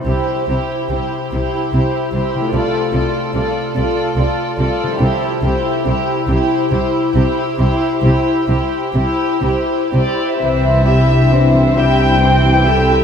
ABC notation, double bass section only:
X:1
M:6/8
L:1/8
Q:3/8=46
K:C
V:1 name="Double bass section" clef=bass
C,, C,, C,, C,, C,, C,, | C,, C,, C,, C,, C,, C,, | C,, C,, C,, C,, C,, C,, | C,, C,, C,, C,, C,, C,, |
C,,3 C,,3 |]